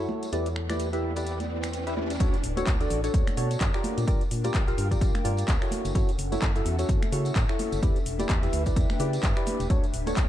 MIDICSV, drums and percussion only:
0, 0, Header, 1, 2, 480
1, 0, Start_track
1, 0, Key_signature, 2, "major"
1, 0, Tempo, 468750
1, 334, Time_signature, 4, 2, 24, 8
1, 10535, End_track
2, 0, Start_track
2, 0, Title_t, "Drums"
2, 89, Note_on_c, 9, 63, 85
2, 192, Note_off_c, 9, 63, 0
2, 231, Note_on_c, 9, 54, 70
2, 233, Note_on_c, 9, 42, 48
2, 333, Note_off_c, 9, 54, 0
2, 333, Note_on_c, 9, 54, 54
2, 335, Note_off_c, 9, 42, 0
2, 335, Note_on_c, 9, 42, 60
2, 436, Note_off_c, 9, 54, 0
2, 437, Note_off_c, 9, 42, 0
2, 467, Note_on_c, 9, 54, 31
2, 472, Note_on_c, 9, 42, 36
2, 569, Note_off_c, 9, 54, 0
2, 574, Note_on_c, 9, 26, 72
2, 575, Note_off_c, 9, 42, 0
2, 677, Note_off_c, 9, 26, 0
2, 712, Note_on_c, 9, 26, 56
2, 712, Note_on_c, 9, 42, 49
2, 714, Note_on_c, 9, 54, 71
2, 717, Note_on_c, 9, 63, 86
2, 811, Note_off_c, 9, 54, 0
2, 811, Note_on_c, 9, 54, 58
2, 814, Note_off_c, 9, 26, 0
2, 814, Note_off_c, 9, 42, 0
2, 815, Note_on_c, 9, 42, 64
2, 819, Note_off_c, 9, 63, 0
2, 913, Note_off_c, 9, 54, 0
2, 918, Note_off_c, 9, 42, 0
2, 954, Note_on_c, 9, 42, 35
2, 960, Note_on_c, 9, 54, 36
2, 1057, Note_off_c, 9, 42, 0
2, 1062, Note_off_c, 9, 54, 0
2, 1188, Note_on_c, 9, 54, 66
2, 1194, Note_on_c, 9, 42, 50
2, 1291, Note_off_c, 9, 54, 0
2, 1293, Note_on_c, 9, 54, 59
2, 1296, Note_off_c, 9, 42, 0
2, 1296, Note_on_c, 9, 42, 60
2, 1396, Note_off_c, 9, 54, 0
2, 1399, Note_off_c, 9, 42, 0
2, 1433, Note_on_c, 9, 54, 36
2, 1434, Note_on_c, 9, 42, 35
2, 1434, Note_on_c, 9, 63, 60
2, 1536, Note_off_c, 9, 54, 0
2, 1536, Note_off_c, 9, 63, 0
2, 1537, Note_off_c, 9, 42, 0
2, 1667, Note_on_c, 9, 54, 65
2, 1675, Note_on_c, 9, 26, 70
2, 1675, Note_on_c, 9, 42, 50
2, 1769, Note_off_c, 9, 54, 0
2, 1773, Note_on_c, 9, 54, 55
2, 1776, Note_off_c, 9, 42, 0
2, 1776, Note_on_c, 9, 42, 62
2, 1777, Note_off_c, 9, 26, 0
2, 1875, Note_off_c, 9, 54, 0
2, 1879, Note_off_c, 9, 42, 0
2, 1911, Note_on_c, 9, 54, 36
2, 1914, Note_on_c, 9, 42, 35
2, 2014, Note_off_c, 9, 54, 0
2, 2017, Note_off_c, 9, 42, 0
2, 2017, Note_on_c, 9, 63, 84
2, 2119, Note_off_c, 9, 63, 0
2, 2153, Note_on_c, 9, 42, 51
2, 2154, Note_on_c, 9, 54, 69
2, 2255, Note_off_c, 9, 42, 0
2, 2255, Note_on_c, 9, 36, 121
2, 2255, Note_on_c, 9, 42, 81
2, 2256, Note_off_c, 9, 54, 0
2, 2256, Note_on_c, 9, 54, 67
2, 2257, Note_on_c, 9, 82, 44
2, 2357, Note_off_c, 9, 36, 0
2, 2358, Note_off_c, 9, 42, 0
2, 2358, Note_off_c, 9, 54, 0
2, 2359, Note_off_c, 9, 82, 0
2, 2391, Note_on_c, 9, 54, 38
2, 2394, Note_on_c, 9, 42, 39
2, 2395, Note_on_c, 9, 82, 23
2, 2493, Note_off_c, 9, 54, 0
2, 2495, Note_on_c, 9, 46, 104
2, 2496, Note_off_c, 9, 42, 0
2, 2496, Note_off_c, 9, 82, 0
2, 2496, Note_on_c, 9, 82, 75
2, 2597, Note_off_c, 9, 46, 0
2, 2598, Note_off_c, 9, 82, 0
2, 2627, Note_on_c, 9, 63, 85
2, 2632, Note_on_c, 9, 54, 78
2, 2634, Note_on_c, 9, 42, 53
2, 2635, Note_on_c, 9, 82, 33
2, 2729, Note_off_c, 9, 63, 0
2, 2733, Note_on_c, 9, 39, 121
2, 2734, Note_off_c, 9, 54, 0
2, 2734, Note_on_c, 9, 36, 116
2, 2736, Note_off_c, 9, 42, 0
2, 2736, Note_on_c, 9, 42, 82
2, 2737, Note_off_c, 9, 82, 0
2, 2737, Note_on_c, 9, 82, 45
2, 2738, Note_on_c, 9, 54, 63
2, 2835, Note_off_c, 9, 39, 0
2, 2837, Note_off_c, 9, 36, 0
2, 2838, Note_off_c, 9, 42, 0
2, 2839, Note_off_c, 9, 82, 0
2, 2841, Note_off_c, 9, 54, 0
2, 2873, Note_on_c, 9, 42, 39
2, 2874, Note_on_c, 9, 54, 36
2, 2874, Note_on_c, 9, 82, 22
2, 2974, Note_on_c, 9, 46, 92
2, 2975, Note_off_c, 9, 42, 0
2, 2975, Note_off_c, 9, 82, 0
2, 2975, Note_on_c, 9, 82, 77
2, 2976, Note_off_c, 9, 54, 0
2, 3077, Note_off_c, 9, 46, 0
2, 3078, Note_off_c, 9, 82, 0
2, 3112, Note_on_c, 9, 42, 55
2, 3113, Note_on_c, 9, 82, 34
2, 3116, Note_on_c, 9, 54, 82
2, 3214, Note_on_c, 9, 36, 119
2, 3215, Note_off_c, 9, 42, 0
2, 3215, Note_on_c, 9, 42, 80
2, 3216, Note_off_c, 9, 54, 0
2, 3216, Note_off_c, 9, 82, 0
2, 3216, Note_on_c, 9, 54, 58
2, 3216, Note_on_c, 9, 82, 45
2, 3317, Note_off_c, 9, 36, 0
2, 3318, Note_off_c, 9, 42, 0
2, 3318, Note_off_c, 9, 54, 0
2, 3319, Note_off_c, 9, 82, 0
2, 3347, Note_on_c, 9, 54, 42
2, 3353, Note_on_c, 9, 26, 63
2, 3353, Note_on_c, 9, 42, 38
2, 3354, Note_on_c, 9, 63, 67
2, 3354, Note_on_c, 9, 82, 22
2, 3450, Note_off_c, 9, 54, 0
2, 3455, Note_off_c, 9, 26, 0
2, 3455, Note_off_c, 9, 42, 0
2, 3455, Note_on_c, 9, 46, 108
2, 3456, Note_off_c, 9, 63, 0
2, 3456, Note_off_c, 9, 82, 0
2, 3456, Note_on_c, 9, 82, 78
2, 3557, Note_off_c, 9, 46, 0
2, 3559, Note_off_c, 9, 82, 0
2, 3593, Note_on_c, 9, 42, 54
2, 3593, Note_on_c, 9, 54, 72
2, 3594, Note_on_c, 9, 82, 32
2, 3693, Note_on_c, 9, 39, 118
2, 3694, Note_off_c, 9, 54, 0
2, 3694, Note_on_c, 9, 36, 112
2, 3694, Note_on_c, 9, 54, 64
2, 3695, Note_off_c, 9, 42, 0
2, 3695, Note_on_c, 9, 42, 79
2, 3696, Note_off_c, 9, 82, 0
2, 3696, Note_on_c, 9, 82, 44
2, 3795, Note_off_c, 9, 39, 0
2, 3796, Note_off_c, 9, 36, 0
2, 3797, Note_off_c, 9, 54, 0
2, 3798, Note_off_c, 9, 42, 0
2, 3799, Note_off_c, 9, 82, 0
2, 3833, Note_on_c, 9, 26, 64
2, 3834, Note_on_c, 9, 82, 22
2, 3837, Note_on_c, 9, 54, 39
2, 3932, Note_on_c, 9, 63, 96
2, 3934, Note_on_c, 9, 46, 92
2, 3935, Note_off_c, 9, 82, 0
2, 3935, Note_on_c, 9, 82, 77
2, 3936, Note_off_c, 9, 26, 0
2, 3939, Note_off_c, 9, 54, 0
2, 4034, Note_off_c, 9, 63, 0
2, 4036, Note_off_c, 9, 46, 0
2, 4037, Note_off_c, 9, 82, 0
2, 4072, Note_on_c, 9, 42, 53
2, 4073, Note_on_c, 9, 82, 33
2, 4074, Note_on_c, 9, 54, 86
2, 4174, Note_on_c, 9, 36, 118
2, 4175, Note_off_c, 9, 42, 0
2, 4175, Note_off_c, 9, 54, 0
2, 4175, Note_on_c, 9, 42, 80
2, 4175, Note_on_c, 9, 54, 61
2, 4176, Note_off_c, 9, 82, 0
2, 4176, Note_on_c, 9, 82, 43
2, 4276, Note_off_c, 9, 36, 0
2, 4277, Note_off_c, 9, 42, 0
2, 4277, Note_off_c, 9, 54, 0
2, 4278, Note_off_c, 9, 82, 0
2, 4313, Note_on_c, 9, 42, 38
2, 4314, Note_on_c, 9, 82, 23
2, 4323, Note_on_c, 9, 54, 37
2, 4415, Note_off_c, 9, 42, 0
2, 4415, Note_on_c, 9, 46, 110
2, 4416, Note_off_c, 9, 82, 0
2, 4416, Note_on_c, 9, 82, 74
2, 4426, Note_off_c, 9, 54, 0
2, 4517, Note_off_c, 9, 46, 0
2, 4518, Note_off_c, 9, 82, 0
2, 4546, Note_on_c, 9, 54, 81
2, 4553, Note_on_c, 9, 42, 54
2, 4554, Note_on_c, 9, 63, 90
2, 4554, Note_on_c, 9, 82, 31
2, 4649, Note_off_c, 9, 54, 0
2, 4649, Note_on_c, 9, 54, 71
2, 4652, Note_on_c, 9, 39, 123
2, 4653, Note_on_c, 9, 36, 120
2, 4655, Note_off_c, 9, 42, 0
2, 4655, Note_on_c, 9, 42, 77
2, 4656, Note_off_c, 9, 63, 0
2, 4656, Note_off_c, 9, 82, 0
2, 4656, Note_on_c, 9, 82, 43
2, 4751, Note_off_c, 9, 54, 0
2, 4755, Note_off_c, 9, 39, 0
2, 4756, Note_off_c, 9, 36, 0
2, 4757, Note_off_c, 9, 42, 0
2, 4758, Note_off_c, 9, 82, 0
2, 4785, Note_on_c, 9, 54, 37
2, 4793, Note_on_c, 9, 42, 37
2, 4794, Note_on_c, 9, 82, 21
2, 4888, Note_off_c, 9, 54, 0
2, 4895, Note_off_c, 9, 42, 0
2, 4896, Note_off_c, 9, 82, 0
2, 4896, Note_on_c, 9, 46, 96
2, 4897, Note_on_c, 9, 82, 77
2, 4998, Note_off_c, 9, 46, 0
2, 4999, Note_off_c, 9, 82, 0
2, 5031, Note_on_c, 9, 36, 63
2, 5034, Note_on_c, 9, 42, 55
2, 5035, Note_on_c, 9, 82, 33
2, 5042, Note_on_c, 9, 54, 85
2, 5133, Note_off_c, 9, 36, 0
2, 5133, Note_on_c, 9, 36, 124
2, 5135, Note_off_c, 9, 42, 0
2, 5135, Note_off_c, 9, 54, 0
2, 5135, Note_on_c, 9, 42, 80
2, 5135, Note_on_c, 9, 54, 72
2, 5137, Note_off_c, 9, 82, 0
2, 5137, Note_on_c, 9, 82, 42
2, 5236, Note_off_c, 9, 36, 0
2, 5238, Note_off_c, 9, 42, 0
2, 5238, Note_off_c, 9, 54, 0
2, 5239, Note_off_c, 9, 82, 0
2, 5269, Note_on_c, 9, 63, 66
2, 5270, Note_on_c, 9, 54, 41
2, 5274, Note_on_c, 9, 26, 64
2, 5274, Note_on_c, 9, 42, 39
2, 5275, Note_on_c, 9, 82, 22
2, 5371, Note_off_c, 9, 63, 0
2, 5373, Note_off_c, 9, 54, 0
2, 5376, Note_off_c, 9, 26, 0
2, 5376, Note_off_c, 9, 42, 0
2, 5376, Note_on_c, 9, 46, 112
2, 5377, Note_off_c, 9, 82, 0
2, 5377, Note_on_c, 9, 82, 79
2, 5478, Note_off_c, 9, 46, 0
2, 5479, Note_off_c, 9, 82, 0
2, 5501, Note_on_c, 9, 54, 72
2, 5514, Note_on_c, 9, 42, 54
2, 5515, Note_on_c, 9, 82, 31
2, 5603, Note_off_c, 9, 54, 0
2, 5609, Note_on_c, 9, 54, 64
2, 5614, Note_on_c, 9, 36, 125
2, 5614, Note_on_c, 9, 39, 120
2, 5616, Note_off_c, 9, 42, 0
2, 5616, Note_on_c, 9, 42, 80
2, 5617, Note_off_c, 9, 82, 0
2, 5617, Note_on_c, 9, 82, 41
2, 5711, Note_off_c, 9, 54, 0
2, 5716, Note_off_c, 9, 36, 0
2, 5716, Note_off_c, 9, 39, 0
2, 5719, Note_off_c, 9, 42, 0
2, 5720, Note_off_c, 9, 82, 0
2, 5752, Note_on_c, 9, 54, 40
2, 5754, Note_on_c, 9, 26, 66
2, 5755, Note_on_c, 9, 82, 22
2, 5849, Note_on_c, 9, 63, 91
2, 5855, Note_off_c, 9, 54, 0
2, 5856, Note_off_c, 9, 26, 0
2, 5856, Note_on_c, 9, 46, 100
2, 5857, Note_off_c, 9, 82, 0
2, 5857, Note_on_c, 9, 82, 76
2, 5952, Note_off_c, 9, 63, 0
2, 5958, Note_off_c, 9, 46, 0
2, 5959, Note_off_c, 9, 82, 0
2, 5989, Note_on_c, 9, 54, 86
2, 5994, Note_on_c, 9, 42, 54
2, 5995, Note_on_c, 9, 82, 31
2, 6091, Note_off_c, 9, 54, 0
2, 6094, Note_on_c, 9, 36, 124
2, 6096, Note_off_c, 9, 42, 0
2, 6097, Note_off_c, 9, 82, 0
2, 6097, Note_on_c, 9, 42, 74
2, 6098, Note_on_c, 9, 82, 40
2, 6101, Note_on_c, 9, 54, 66
2, 6196, Note_off_c, 9, 36, 0
2, 6199, Note_off_c, 9, 42, 0
2, 6200, Note_off_c, 9, 82, 0
2, 6204, Note_off_c, 9, 54, 0
2, 6234, Note_on_c, 9, 42, 37
2, 6235, Note_on_c, 9, 82, 22
2, 6242, Note_on_c, 9, 54, 41
2, 6336, Note_off_c, 9, 42, 0
2, 6336, Note_on_c, 9, 46, 108
2, 6337, Note_off_c, 9, 82, 0
2, 6337, Note_on_c, 9, 82, 76
2, 6345, Note_off_c, 9, 54, 0
2, 6438, Note_off_c, 9, 46, 0
2, 6439, Note_off_c, 9, 82, 0
2, 6471, Note_on_c, 9, 54, 86
2, 6475, Note_on_c, 9, 42, 50
2, 6476, Note_on_c, 9, 63, 94
2, 6476, Note_on_c, 9, 82, 30
2, 6574, Note_off_c, 9, 54, 0
2, 6574, Note_on_c, 9, 36, 126
2, 6574, Note_on_c, 9, 39, 120
2, 6576, Note_on_c, 9, 54, 73
2, 6577, Note_off_c, 9, 42, 0
2, 6577, Note_on_c, 9, 42, 76
2, 6578, Note_off_c, 9, 63, 0
2, 6578, Note_off_c, 9, 82, 0
2, 6578, Note_on_c, 9, 82, 41
2, 6676, Note_off_c, 9, 36, 0
2, 6677, Note_off_c, 9, 39, 0
2, 6678, Note_off_c, 9, 54, 0
2, 6679, Note_off_c, 9, 42, 0
2, 6680, Note_off_c, 9, 82, 0
2, 6707, Note_on_c, 9, 54, 40
2, 6714, Note_on_c, 9, 42, 37
2, 6715, Note_on_c, 9, 82, 20
2, 6810, Note_off_c, 9, 54, 0
2, 6817, Note_off_c, 9, 42, 0
2, 6817, Note_on_c, 9, 46, 93
2, 6818, Note_off_c, 9, 82, 0
2, 6818, Note_on_c, 9, 82, 73
2, 6919, Note_off_c, 9, 46, 0
2, 6921, Note_off_c, 9, 82, 0
2, 6948, Note_on_c, 9, 54, 82
2, 6954, Note_on_c, 9, 42, 54
2, 6956, Note_on_c, 9, 82, 32
2, 7050, Note_off_c, 9, 54, 0
2, 7050, Note_on_c, 9, 54, 67
2, 7054, Note_on_c, 9, 36, 127
2, 7057, Note_off_c, 9, 42, 0
2, 7057, Note_on_c, 9, 42, 76
2, 7058, Note_off_c, 9, 82, 0
2, 7058, Note_on_c, 9, 82, 42
2, 7152, Note_off_c, 9, 54, 0
2, 7157, Note_off_c, 9, 36, 0
2, 7160, Note_off_c, 9, 42, 0
2, 7161, Note_off_c, 9, 82, 0
2, 7194, Note_on_c, 9, 26, 66
2, 7194, Note_on_c, 9, 42, 36
2, 7195, Note_on_c, 9, 63, 74
2, 7195, Note_on_c, 9, 82, 21
2, 7199, Note_on_c, 9, 54, 42
2, 7296, Note_on_c, 9, 46, 115
2, 7297, Note_off_c, 9, 26, 0
2, 7297, Note_off_c, 9, 42, 0
2, 7297, Note_off_c, 9, 63, 0
2, 7297, Note_off_c, 9, 82, 0
2, 7297, Note_on_c, 9, 82, 78
2, 7301, Note_off_c, 9, 54, 0
2, 7399, Note_off_c, 9, 46, 0
2, 7400, Note_off_c, 9, 82, 0
2, 7424, Note_on_c, 9, 54, 76
2, 7434, Note_on_c, 9, 42, 51
2, 7435, Note_on_c, 9, 82, 32
2, 7527, Note_off_c, 9, 54, 0
2, 7532, Note_on_c, 9, 54, 74
2, 7533, Note_on_c, 9, 39, 120
2, 7534, Note_on_c, 9, 36, 122
2, 7536, Note_off_c, 9, 42, 0
2, 7536, Note_on_c, 9, 42, 79
2, 7537, Note_off_c, 9, 82, 0
2, 7537, Note_on_c, 9, 82, 42
2, 7635, Note_off_c, 9, 54, 0
2, 7636, Note_off_c, 9, 36, 0
2, 7636, Note_off_c, 9, 39, 0
2, 7638, Note_off_c, 9, 42, 0
2, 7639, Note_off_c, 9, 82, 0
2, 7672, Note_on_c, 9, 54, 38
2, 7673, Note_on_c, 9, 26, 69
2, 7674, Note_on_c, 9, 82, 22
2, 7775, Note_off_c, 9, 54, 0
2, 7775, Note_on_c, 9, 46, 95
2, 7776, Note_off_c, 9, 26, 0
2, 7776, Note_off_c, 9, 82, 0
2, 7776, Note_on_c, 9, 63, 89
2, 7776, Note_on_c, 9, 82, 73
2, 7877, Note_off_c, 9, 46, 0
2, 7878, Note_off_c, 9, 82, 0
2, 7879, Note_off_c, 9, 63, 0
2, 7908, Note_on_c, 9, 54, 90
2, 7912, Note_on_c, 9, 42, 49
2, 7913, Note_on_c, 9, 82, 31
2, 8010, Note_off_c, 9, 54, 0
2, 8014, Note_off_c, 9, 42, 0
2, 8014, Note_on_c, 9, 36, 122
2, 8015, Note_off_c, 9, 82, 0
2, 8016, Note_on_c, 9, 42, 71
2, 8017, Note_on_c, 9, 54, 64
2, 8017, Note_on_c, 9, 82, 42
2, 8116, Note_off_c, 9, 36, 0
2, 8118, Note_off_c, 9, 42, 0
2, 8119, Note_off_c, 9, 54, 0
2, 8119, Note_off_c, 9, 82, 0
2, 8152, Note_on_c, 9, 42, 36
2, 8153, Note_on_c, 9, 82, 23
2, 8156, Note_on_c, 9, 54, 35
2, 8254, Note_on_c, 9, 46, 105
2, 8255, Note_off_c, 9, 42, 0
2, 8255, Note_off_c, 9, 82, 0
2, 8255, Note_on_c, 9, 82, 76
2, 8258, Note_off_c, 9, 54, 0
2, 8357, Note_off_c, 9, 46, 0
2, 8358, Note_off_c, 9, 82, 0
2, 8386, Note_on_c, 9, 63, 99
2, 8392, Note_on_c, 9, 42, 48
2, 8392, Note_on_c, 9, 54, 76
2, 8394, Note_on_c, 9, 82, 31
2, 8488, Note_off_c, 9, 63, 0
2, 8490, Note_off_c, 9, 54, 0
2, 8490, Note_on_c, 9, 54, 73
2, 8492, Note_on_c, 9, 39, 116
2, 8494, Note_on_c, 9, 36, 121
2, 8495, Note_off_c, 9, 42, 0
2, 8495, Note_on_c, 9, 42, 73
2, 8496, Note_off_c, 9, 82, 0
2, 8496, Note_on_c, 9, 82, 44
2, 8592, Note_off_c, 9, 54, 0
2, 8595, Note_off_c, 9, 39, 0
2, 8596, Note_off_c, 9, 36, 0
2, 8597, Note_off_c, 9, 42, 0
2, 8598, Note_off_c, 9, 82, 0
2, 8633, Note_on_c, 9, 42, 35
2, 8633, Note_on_c, 9, 54, 41
2, 8634, Note_on_c, 9, 82, 21
2, 8735, Note_on_c, 9, 46, 95
2, 8736, Note_off_c, 9, 42, 0
2, 8736, Note_off_c, 9, 54, 0
2, 8736, Note_off_c, 9, 82, 0
2, 8736, Note_on_c, 9, 82, 77
2, 8837, Note_off_c, 9, 46, 0
2, 8838, Note_off_c, 9, 82, 0
2, 8866, Note_on_c, 9, 54, 76
2, 8872, Note_on_c, 9, 36, 67
2, 8874, Note_on_c, 9, 42, 51
2, 8875, Note_on_c, 9, 82, 33
2, 8968, Note_off_c, 9, 54, 0
2, 8974, Note_off_c, 9, 36, 0
2, 8974, Note_on_c, 9, 36, 123
2, 8975, Note_off_c, 9, 42, 0
2, 8975, Note_on_c, 9, 42, 72
2, 8976, Note_off_c, 9, 82, 0
2, 8976, Note_on_c, 9, 82, 45
2, 8981, Note_on_c, 9, 54, 73
2, 9076, Note_off_c, 9, 36, 0
2, 9078, Note_off_c, 9, 42, 0
2, 9079, Note_off_c, 9, 82, 0
2, 9084, Note_off_c, 9, 54, 0
2, 9112, Note_on_c, 9, 26, 67
2, 9112, Note_on_c, 9, 42, 36
2, 9113, Note_on_c, 9, 82, 23
2, 9115, Note_on_c, 9, 63, 70
2, 9119, Note_on_c, 9, 54, 42
2, 9214, Note_off_c, 9, 26, 0
2, 9214, Note_off_c, 9, 42, 0
2, 9214, Note_on_c, 9, 46, 114
2, 9215, Note_off_c, 9, 82, 0
2, 9215, Note_on_c, 9, 82, 79
2, 9217, Note_off_c, 9, 63, 0
2, 9221, Note_off_c, 9, 54, 0
2, 9316, Note_off_c, 9, 46, 0
2, 9317, Note_off_c, 9, 82, 0
2, 9353, Note_on_c, 9, 42, 47
2, 9354, Note_on_c, 9, 82, 32
2, 9360, Note_on_c, 9, 54, 83
2, 9453, Note_on_c, 9, 39, 115
2, 9454, Note_on_c, 9, 36, 119
2, 9455, Note_off_c, 9, 42, 0
2, 9455, Note_on_c, 9, 42, 76
2, 9456, Note_off_c, 9, 54, 0
2, 9456, Note_off_c, 9, 82, 0
2, 9456, Note_on_c, 9, 54, 67
2, 9456, Note_on_c, 9, 82, 42
2, 9555, Note_off_c, 9, 39, 0
2, 9556, Note_off_c, 9, 36, 0
2, 9558, Note_off_c, 9, 42, 0
2, 9559, Note_off_c, 9, 54, 0
2, 9559, Note_off_c, 9, 82, 0
2, 9593, Note_on_c, 9, 26, 68
2, 9594, Note_on_c, 9, 82, 23
2, 9597, Note_on_c, 9, 54, 46
2, 9695, Note_on_c, 9, 46, 94
2, 9696, Note_off_c, 9, 26, 0
2, 9696, Note_off_c, 9, 82, 0
2, 9696, Note_on_c, 9, 82, 75
2, 9698, Note_on_c, 9, 63, 93
2, 9699, Note_off_c, 9, 54, 0
2, 9798, Note_off_c, 9, 46, 0
2, 9799, Note_off_c, 9, 82, 0
2, 9800, Note_off_c, 9, 63, 0
2, 9832, Note_on_c, 9, 42, 48
2, 9833, Note_on_c, 9, 82, 32
2, 9838, Note_on_c, 9, 54, 83
2, 9933, Note_off_c, 9, 42, 0
2, 9933, Note_on_c, 9, 36, 115
2, 9933, Note_on_c, 9, 42, 75
2, 9934, Note_off_c, 9, 54, 0
2, 9934, Note_on_c, 9, 54, 69
2, 9935, Note_off_c, 9, 82, 0
2, 9935, Note_on_c, 9, 82, 44
2, 10036, Note_off_c, 9, 36, 0
2, 10036, Note_off_c, 9, 42, 0
2, 10037, Note_off_c, 9, 54, 0
2, 10037, Note_off_c, 9, 82, 0
2, 10072, Note_on_c, 9, 42, 37
2, 10073, Note_on_c, 9, 82, 23
2, 10079, Note_on_c, 9, 54, 38
2, 10175, Note_off_c, 9, 42, 0
2, 10175, Note_on_c, 9, 46, 103
2, 10176, Note_off_c, 9, 82, 0
2, 10176, Note_on_c, 9, 82, 78
2, 10181, Note_off_c, 9, 54, 0
2, 10277, Note_off_c, 9, 46, 0
2, 10278, Note_off_c, 9, 82, 0
2, 10306, Note_on_c, 9, 63, 81
2, 10309, Note_on_c, 9, 54, 85
2, 10313, Note_on_c, 9, 42, 51
2, 10314, Note_on_c, 9, 82, 32
2, 10409, Note_off_c, 9, 63, 0
2, 10411, Note_off_c, 9, 54, 0
2, 10412, Note_on_c, 9, 39, 112
2, 10413, Note_on_c, 9, 36, 118
2, 10414, Note_off_c, 9, 42, 0
2, 10414, Note_on_c, 9, 42, 77
2, 10415, Note_off_c, 9, 82, 0
2, 10415, Note_on_c, 9, 82, 44
2, 10514, Note_off_c, 9, 39, 0
2, 10515, Note_off_c, 9, 36, 0
2, 10517, Note_off_c, 9, 42, 0
2, 10518, Note_off_c, 9, 82, 0
2, 10535, End_track
0, 0, End_of_file